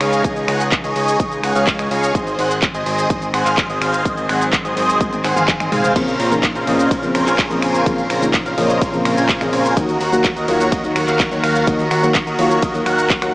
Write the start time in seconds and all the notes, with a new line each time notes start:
Already playing: C#3 G#3 D#4
0.01 C#2 G#4 C#5 F5, finger snap, open hi-hat
0.12 closed hi-hat, shaker
0.24 C#2 G#4 C#5 D#5, kick, closed hi-hat, shaker
0.36 closed hi-hat, shaker
0.48 C#2 G#4 C#5 F#5, finger snap, open hi-hat
0.60 closed hi-hat, shaker
0.72 kick, clap, closed hi-hat, shaker
0.84 C#2 G#4 C#5 D#5, closed hi-hat, shaker
0.96 C#2 G#4 C#5 D#5, open hi-hat
1.08 closed hi-hat, shaker
1.20 C#2 G#4 C#5 D#5, kick, closed hi-hat, shaker
1.32 closed hi-hat, shaker
1.44 C#2 G#4 C#5 F#5, finger snap, open hi-hat
1.55 C#2 G#4 C#5 F5, closed hi-hat, shaker
1.67 kick, clap, closed hi-hat, shaker
1.79 C#2 G#4 C#5 D#5, finger snap, closed hi-hat, shaker
1.91 C#2 G#4 C#5 F5, open hi-hat
2.03 closed hi-hat, shaker
2.15 G#1 D#3 C4 G#4 C5 D#5, kick, closed hi-hat, shaker
2.27 closed hi-hat, shaker
2.39 G#1 G#4 C5 F#5, open hi-hat
2.51 closed hi-hat, shaker
2.62 kick, clap, closed hi-hat, shaker
2.74 G#1 G#4 C5 D#5, closed hi-hat, shaker
2.86 G#1 G#4 C5 D#5, open hi-hat
2.98 closed hi-hat, shaker
3.10 G#1 G#4 D#5, kick, closed hi-hat, shaker
3.22 closed hi-hat, shaker
3.34 G#1 G#4 C5 F#5, finger snap, open hi-hat
3.46 G#1 G#4 C5 F5, clap, closed hi-hat, shaker
3.58 kick, clap, closed hi-hat, shaker
3.70 G#1 G#4 C5 D#5, closed hi-hat, shaker
3.81 G#1 G#4 C5 F5, finger snap, open hi-hat
3.94 closed hi-hat, shaker
4.05 G#1 F#3 G#4 C5 D#5, kick, closed hi-hat, shaker
4.17 closed hi-hat, shaker
4.29 G#1 G#4 C5 F#5, finger snap, open hi-hat
4.41 closed hi-hat, shaker
4.53 kick, clap, closed hi-hat, shaker
4.65 G#1 G#4 C5 D#5, closed hi-hat, shaker
4.77 G#1 G#4 C5 D#5, open hi-hat
4.89 closed hi-hat, shaker
5.01 G#1 G#4 C5 D#5, kick, closed hi-hat, high tom, shaker
5.13 closed hi-hat, high tom, shaker
5.24 G#1 G#4 C5 F#5, finger snap, clap, open hi-hat
5.36 G#1 G#4 C5 F5, closed hi-hat, mid tom, shaker
5.48 kick, clap, closed hi-hat, mid tom, shaker
5.60 G#1 G#4 C5 D#5, finger snap, closed hi-hat, mid tom, shaker
5.72 G#2 G#4 C5 F5, mid tom, open hi-hat
5.84 closed hi-hat, mid tom, shaker
5.95 A#1 C#3 F3 A#3 C4 C#4 F4 C5 F5, kick, closed hi-hat, crash, ride, shaker
6.08 closed hi-hat, shaker
6.20 A#1 C#4 F4 A#4 C5 A#5, open hi-hat
6.31 C#3 F3 A#3 D#4, closed hi-hat, shaker
6.43 kick, clap, closed hi-hat, ride, shaker
6.55 A#1 C#4 F4 A#4 C5 F5, closed hi-hat, shaker
6.67 A#1 C#3 F3 A#3 C#4 F4 A#4 C5 D#5, open hi-hat
6.79 closed hi-hat, shaker
6.91 A#1 C#4 F4 F5, kick, closed hi-hat, ride, shaker
7.02 C#3 F3 A#3 C4, closed hi-hat, shaker
7.15 A#1 C#4 F4 A#4 C5 A#5, finger snap, open hi-hat
7.27 A#1 C#4 F4 A#4 C5 G#5, clap, closed hi-hat, shaker
7.39 kick, clap, closed hi-hat, ride, shaker
7.50 A#1 C#3 F3 A#3 C4 C#4 F4 A#4 C5 D#5, closed hi-hat, shaker
7.62 A#1 C#4 F4 A#4 C5 G#5, finger snap, open hi-hat
7.74 closed hi-hat, shaker
7.86 A#1 C#3 F3 A#3 C4 C#4 F4 A#4 C5 F5, kick, closed hi-hat, ride, shaker
7.98 closed hi-hat, shaker
8.10 A#1 C#4 F4 A#4 C5 A#5, finger snap, open hi-hat
8.21 C#3 F3 A#3 D#4, closed hi-hat, shaker
8.34 kick, clap, closed hi-hat, ride, shaker
8.46 A#1 C#4 F4 A#4 C5 F5, closed hi-hat, shaker
8.57 A#1 C#3 F3 A#3 C#4 F4 A#4 C5 D#5, open hi-hat
8.70 closed hi-hat, shaker
8.81 A#1 C#4 F4 A#4 C5 F5, kick, closed hi-hat, ride, shaker
8.92 C#3 F3 A#3 C4, closed hi-hat, shaker
9.05 A#1 C#4 F4 A#4 C5 A#5, finger snap, open hi-hat
9.17 A#1 C#4 F4 A#4 C5 G#5, closed hi-hat, shaker
9.29 kick, clap, closed hi-hat, ride, shaker
9.40 A#1 C#3 F3 A#3 C4 C#4 F4 A#4 C5 D#5, finger snap, closed hi-hat, shaker
9.53 A#1 C#4 F4 A#4 C5 G#5, open hi-hat
9.65 closed hi-hat, shaker
9.76 D#2 D#3 F#3 A#3 D#4 F#4 D#5, kick, closed hi-hat, ride, shaker
9.89 closed hi-hat, shaker
10.01 D#2 F#4 A#4 F#5, open hi-hat
10.12 D#3 F#3 A#3 F#4, closed hi-hat, shaker
10.24 kick, clap, closed hi-hat, ride, shaker
10.36 D#2 F#4 A#4 D#5, closed hi-hat, shaker
10.48 D#2 D#3 F#3 A#3 F4 F#4 A#4 C#5, open hi-hat
10.60 closed hi-hat, shaker
10.72 D#2 F#4 A#4 D#5, kick, closed hi-hat, ride, shaker
10.83 D#3 F#3 A#3 D#4, closed hi-hat, shaker
10.96 D#2 F#4 A#4 F#5, finger snap, open hi-hat
11.08 D#2 F#4 A#4 F5, clap, closed hi-hat, shaker
11.20 kick, clap, closed hi-hat, ride, shaker
11.31 D#2 D#3 F#3 A#3 D#4 F#4 A#4 C#5, closed hi-hat, shaker
11.43 D#2 F#4 A#4 F5, finger snap, open hi-hat
11.55 closed hi-hat, shaker
11.67 D#2 D#3 F#3 A#3 D#4 D#5, kick, closed hi-hat, ride, shaker
11.79 closed hi-hat, shaker
11.91 D#2 F#4 A#4 F#5, finger snap, open hi-hat
12.02 D#3 F#3 A#3 F#4, closed hi-hat, shaker
12.15 kick, clap, closed hi-hat, ride, shaker
12.27 D#2 F#4 A#4 D#5, closed hi-hat, shaker
12.38 D#2 D#3 F#3 A#3 F4 F#4 A#4 C#5, open hi-hat
12.51 closed hi-hat, shaker
12.62 D#2 F#4 A#4 D#5, kick, closed hi-hat, ride, shaker
12.74 D#3 F#3 A#3 D#4, closed hi-hat, shaker
12.86 D#2 F#4 A#4 F#5, finger snap, open hi-hat
12.98 closed hi-hat, shaker
13.10 kick, clap, closed hi-hat, ride, shaker
13.21 D#2 D#3 F#3 A#3 D#4 F#4 A#4 F#5, finger snap, closed hi-hat, shaker